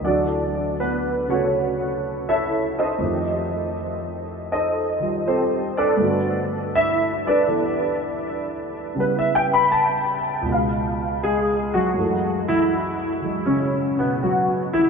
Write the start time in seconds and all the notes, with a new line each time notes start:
0.00 D2 E3 F#3
0.05 D4 F#4 A4 D5
0.80 B3 B4
1.28 C#3 A3 C#4 F#4 A4 C#5
2.29 E4 A4 C#5 E5
2.79 D#4 A4 C5 D#5
2.98 F2 D#3 A3
3.04 G4
4.52 D#4 A4 C5 D#5
4.99 D#3 G3 F4
5.27 C4 G4 A4 C5
5.77 D4 A4 B4 D5
5.97 G2 D3 A3 B3
6.01 D4 F#4
6.75 E4 E5
7.27 D4 A4 B4 D5
7.48 E3 B3 G4
8.95 C#3 G3 B3
9.00 E4 B4
9.19 E5
9.35 G5
9.53 B5
9.72 A5
10.41 C#2 B2
10.49 G#3 F5
11.23 G#3 G#4
11.74 F#3 F#4
11.94 F#2 E3 G#3
11.99 A3
12.48 E3 E4
13.22 E3 F#3 G#3
13.46 C#3 C#4
13.99 B2 B3
14.23 F#3 F#4
14.73 E3 E4